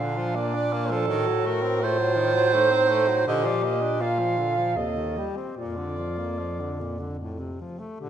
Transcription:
0.00 1.10 A#2 medium
0.00 0.18 D3 medium
0.00 1.10 D4 medium
0.00 0.36 F5 medium
0.17 0.38 F3 medium
0.35 0.56 A#3 medium
0.35 0.92 D5 medium
0.54 0.75 D4 medium
0.73 0.92 A#3 medium
0.91 1.07 F3 medium
0.91 1.48 A4 medium
1.08 3.27 A2 medium
1.08 1.29 D#3 medium
1.08 1.85 F#4 medium
1.27 1.47 F#3 medium
1.46 1.64 A3 medium
1.46 1.85 A#4 medium
1.62 1.82 C4 medium
1.81 2.00 A3 medium
1.81 2.56 F4 medium
1.81 3.27 C5 loud
1.99 2.18 F#3 medium
2.16 2.36 D#3 medium
2.34 2.55 F#3 medium
2.54 2.73 A3 medium
2.54 3.27 D#4 medium
2.71 2.91 C4 medium
2.89 3.10 A3 medium
3.08 3.25 F#3 medium
3.26 4.78 A#2 medium
3.26 3.46 D3 medium
3.26 4.03 G4 medium
3.26 3.48 D#5 medium
3.45 3.65 F3 medium
3.45 3.65 D5 medium
3.64 3.84 A#3 medium
3.64 4.03 D#5 medium
3.82 4.03 D4 medium
4.01 4.21 A#3 medium
4.01 4.78 F4 medium
4.01 4.78 F5 medium
4.19 4.39 F3 medium
4.38 4.59 D3 soft
4.57 4.75 F3 medium
4.76 5.30 D#2 medium
4.76 4.98 C3 soft
4.76 5.19 A4 medium
4.76 5.30 D#5 medium
4.97 5.19 D#3 soft
5.17 5.38 G3 soft
5.17 5.60 G4 soft
5.37 5.57 C4 soft
5.58 7.63 F2 soft
5.58 5.79 A#2 soft
5.58 7.60 F4 medium
5.58 7.17 D5 medium
5.78 5.99 D3 soft
5.98 6.20 F3 soft
6.18 6.40 A#3 soft
6.39 6.62 F3 soft
6.60 6.82 D3 soft
6.81 7.01 A#2 soft
7.00 7.19 D3 soft
7.19 7.41 A2 soft
7.40 7.62 C3 soft
7.61 7.81 F3 soft
7.79 8.00 A3 soft
8.00 8.10 A#2 medium
8.00 8.10 D3 soft
8.00 8.10 G4 medium

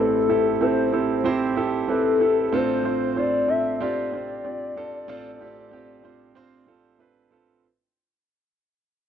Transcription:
0.00 2.17 A1 medium
0.00 2.17 A2 medium
0.00 0.16 C4 medium
0.00 0.16 E4 medium
0.00 0.17 G4 medium
0.00 0.17 A4 medium
0.00 0.63 A4 loud
0.29 0.51 C4 medium
0.29 0.51 E4 medium
0.29 0.52 G4 medium
0.29 0.52 A4 medium
0.61 0.83 C4 medium
0.61 0.83 E4 medium
0.61 0.84 G4 medium
0.61 0.84 A4 medium
0.61 1.25 C5 medium
0.92 1.15 C4 medium
0.92 1.15 E4 medium
0.92 1.16 G4 medium
0.92 1.16 A4 medium
1.24 1.47 C4 medium
1.24 1.47 E4 medium
1.24 1.47 G4 medium
1.24 1.48 C5 loud
1.56 1.79 C4 medium
1.56 1.79 E4 medium
1.56 1.79 G4 medium
1.56 1.79 A4 medium
1.88 2.11 C4 medium
1.88 2.11 E4 medium
1.88 2.11 G4 medium
1.88 2.55 A4 loud
1.88 2.11 B4 medium
2.20 2.43 C4 medium
2.20 2.43 E4 medium
2.20 2.43 G4 medium
2.20 2.43 A4 medium
2.52 5.04 A1 medium
2.52 5.04 A2 medium
2.52 2.75 C4 medium
2.52 2.75 D4 medium
2.52 2.75 F4 medium
2.52 2.75 A4 loud
2.52 3.19 C5 loud
2.84 3.07 C4 medium
2.84 3.07 D4 medium
2.84 3.07 F4 medium
2.84 3.07 C5 medium
3.16 3.39 C4 medium
3.16 3.39 D4 medium
3.16 3.39 F4 medium
3.16 3.39 C5 medium
3.16 3.51 D5 loud
3.48 3.71 C4 medium
3.48 3.71 D4 medium
3.48 3.71 F4 medium
3.48 3.71 A4 medium
3.48 3.81 E5 loud
3.81 4.03 C4 medium
3.81 4.03 D4 medium
3.81 4.03 F4 medium
3.81 4.03 G4 loud
3.81 6.96 D5 loud
4.12 4.35 C4 medium
4.12 4.35 D4 medium
4.12 4.35 F4 medium
4.12 4.35 C5 medium
4.44 4.67 C4 medium
4.44 4.67 D4 medium
4.44 4.67 F4 medium
4.44 4.67 G4 medium
4.76 4.99 C4 medium
4.76 4.99 D4 medium
4.76 4.99 F4 medium
4.76 4.99 A4 loud
5.08 7.59 A1 medium
5.08 7.59 A2 medium
5.08 5.30 C4 loud
5.08 5.31 D4 loud
5.08 5.31 F4 loud
5.08 5.31 A4 loud
5.40 5.62 C4 medium
5.40 5.62 D4 medium
5.40 5.63 F4 medium
5.40 5.63 G4 loud
5.71 5.94 C4 medium
5.71 5.94 D4 medium
5.71 5.95 F4 medium
5.71 5.95 G4 loud
6.03 6.26 C4 medium
6.03 6.26 D4 medium
6.03 6.26 F4 medium
6.03 6.27 C5 medium
6.35 6.58 C4 loud
6.35 6.58 D4 loud
6.35 6.58 F4 medium
6.35 6.58 C5 loud
6.67 6.89 C4 medium
6.67 6.90 D4 medium
6.67 6.90 F4 medium
6.67 6.90 A4 medium
6.99 7.21 C4 medium
6.99 7.22 D4 medium
6.99 7.22 F4 medium
6.99 7.22 B4 medium
7.31 7.53 C4 medium
7.31 7.54 D4 medium
7.31 7.54 F4 medium
7.31 7.54 A4 medium

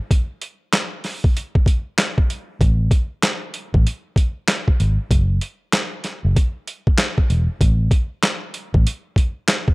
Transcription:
0.11 kick loud
0.11 closed hi-hat loud
0.42 closed hi-hat medium
0.73 snare loud
0.73 clap loud
0.73 closed hi-hat medium
1.04 snare soft
1.04 open hi-hat medium
1.24 kick loud
1.37 closed hi-hat medium
1.55 kick loud
1.66 kick medium
1.66 closed hi-hat medium
1.98 snare loud
1.98 clap loud
1.98 closed hi-hat medium
2.18 kick medium
2.30 closed hi-hat medium
2.61 2.87 A1 loud
2.61 kick loud
2.61 closed hi-hat medium
2.91 kick loud
2.91 closed hi-hat medium
3.23 snare loud
3.23 clap medium
3.23 closed hi-hat medium
3.54 closed hi-hat medium
3.74 3.84 A1 medium
3.74 kick loud
3.87 closed hi-hat medium
4.16 kick medium
4.16 closed hi-hat medium
4.48 snare loud
4.48 clap loud
4.48 closed hi-hat medium
4.68 kick medium
4.80 4.97 G#1 medium
4.80 closed hi-hat medium
5.11 5.37 F#1 loud
5.11 kick loud
5.11 closed hi-hat medium
5.41 closed hi-hat medium
5.73 snare loud
5.73 clap medium
5.73 closed hi-hat medium
6.04 snare soft
6.04 closed hi-hat medium
6.25 6.34 F#1 medium
6.36 kick medium
6.36 closed hi-hat medium
6.68 closed hi-hat medium
6.87 kick loud
6.98 snare loud
6.98 clap loud
6.98 closed hi-hat medium
7.18 kick medium
7.30 7.47 E1 medium
7.30 closed hi-hat medium
7.61 7.88 A1 loud
7.61 kick loud
7.61 closed hi-hat medium
7.91 kick loud
7.91 closed hi-hat medium
8.23 snare loud
8.23 clap medium
8.23 closed hi-hat medium
8.54 closed hi-hat medium
8.74 8.84 A1 medium
8.74 kick loud
8.87 closed hi-hat medium
9.16 kick medium
9.16 closed hi-hat medium
9.48 snare loud
9.48 clap loud
9.48 closed hi-hat medium
9.68 kick medium

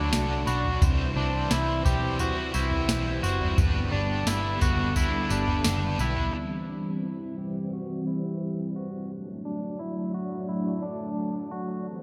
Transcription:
0.00 0.79 F#3 medium
0.00 0.79 A3 medium
0.00 0.12 D4 soft
0.00 0.47 D4 medium
0.00 0.79 D4 medium
0.00 0.13 F#4 soft
0.00 0.13 D5 medium
0.12 0.43 C2 medium
0.12 0.47 D3 medium
0.12 0.48 A3 medium
0.12 0.48 D4 medium
0.12 0.47 F#4 medium
0.12 0.45 D5 medium
0.12 snare loud
0.12 tambourine medium
0.46 0.78 B1 loud
0.46 0.82 D4 medium
0.46 0.82 F#4 medium
0.46 0.81 D5 medium
0.46 1.13 B5 medium
0.46 tambourine medium
0.65 floor tom medium
0.81 1.12 C2 loud
0.81 1.16 C3 medium
0.81 3.55 E3 medium
0.81 1.16 E3 medium
0.81 6.30 G3 medium
0.81 1.17 G3 medium
0.81 3.55 C4 medium
0.81 1.17 C4 medium
0.81 1.15 E4 medium
0.81 1.14 C5 loud
0.81 kick loud
0.81 floor tom loud
0.81 tambourine medium
1.15 1.47 C2 loud
1.15 1.51 C4 medium
1.15 1.51 D4 medium
1.15 1.51 E4 medium
1.15 1.50 C5 medium
1.19 1.50 G3 soft
1.50 1.81 C2 loud
1.50 1.85 C3 medium
1.50 1.85 E3 medium
1.50 1.86 G3 medium
1.50 1.86 C4 medium
1.50 1.85 E4 medium
1.50 1.85 E4 loud
1.50 1.83 C5 medium
1.50 snare loud
1.50 tambourine medium
1.84 2.31 B1 medium
1.84 2.18 G3 medium
1.84 2.20 C4 medium
1.84 2.20 E4 medium
1.84 2.20 G4 medium
1.84 2.19 C5 medium
1.84 kick loud
1.84 floor tom medium
1.84 tambourine medium
2.19 2.54 G3 medium
2.19 2.55 C4 medium
2.19 2.54 E4 medium
2.19 2.54 F#4 medium
2.19 floor tom medium
2.19 tambourine medium
2.24 2.53 C5 medium
2.54 2.85 C2 medium
2.54 2.89 G3 medium
2.54 2.90 C4 soft
2.54 3.23 E4 medium
2.54 2.89 E4 medium
2.54 2.89 C5 medium
2.54 tambourine medium
2.71 floor tom medium
2.89 3.19 B1 medium
2.89 3.24 E3 medium
2.89 3.24 G3 medium
2.89 3.24 C4 medium
2.89 3.23 E4 medium
2.89 3.22 C5 loud
2.89 snare loud
2.89 tambourine medium
3.23 3.54 F#1 loud
3.23 3.57 G3 soft
3.23 3.58 C4 medium
3.23 3.58 E4 medium
3.23 3.58 F#4 medium
3.23 3.58 C5 medium
3.23 tambourine medium
3.41 floor tom medium
3.58 3.88 G1 loud
3.58 6.31 D3 medium
3.58 3.92 G3 medium
3.58 6.31 B3 medium
3.58 3.93 D4 medium
3.58 3.92 G4 loud
3.58 3.91 B4 loud
3.58 kick loud
3.58 floor tom loud
3.58 tambourine medium
3.92 4.23 G1 loud
3.92 4.27 D4 medium
3.92 4.27 D4 soft
3.92 4.27 G4 medium
3.92 4.27 B4 medium
4.26 4.57 G1 medium
4.26 4.62 G3 medium
4.26 4.62 D4 medium
4.26 4.61 E4 medium
4.26 4.62 G4 medium
4.26 4.60 B4 medium
4.26 snare loud
4.26 tambourine medium
4.61 5.07 F#1 medium
4.61 4.96 D4 soft
4.61 4.96 F#4 medium
4.61 4.97 G4 soft
4.61 4.96 B4 medium
4.61 kick loud
4.61 floor tom medium
4.61 tambourine medium
4.96 5.30 G3 medium
4.96 5.31 D4 medium
4.96 5.31 E4 medium
4.96 5.30 G4 medium
4.96 5.28 B4 medium
4.96 kick medium
4.96 floor tom medium
4.96 tambourine medium
5.29 5.61 G1 loud
5.29 6.00 D4 medium
5.29 5.64 D4 soft
5.29 5.65 G4 medium
5.29 5.64 B4 medium
5.29 tambourine medium
5.48 floor tom medium
5.64 5.95 F#1 medium
5.64 5.99 G3 medium
5.64 5.99 D4 medium
5.64 6.00 G4 medium
5.64 5.98 B4 medium
5.64 snare loud
5.64 tambourine medium
5.99 6.29 B1 loud
5.99 6.36 D4 soft
5.99 6.34 E4 medium
5.99 6.35 G4 soft
5.99 6.34 B4 medium
5.99 tambourine medium
6.17 floor tom medium
6.34 9.07 E3 medium
6.34 9.07 G3 medium
6.34 9.07 C4 medium
6.69 7.03 D4 medium
7.04 7.38 E4 medium
7.38 7.72 G4 medium
7.73 8.07 F#4 medium
8.07 8.75 E4 medium
8.76 9.10 F#4 medium
9.11 11.83 F#3 medium
9.11 11.83 A3 medium
9.11 11.83 D4 medium
9.45 9.79 D4 medium
9.79 10.13 E4 medium
10.14 10.48 F#4 medium
10.49 10.83 E4 medium
10.83 11.51 D4 medium
11.51 11.86 F#4 medium
11.85 12.03 E3 medium
11.85 12.03 G3 medium
11.85 12.03 C4 medium

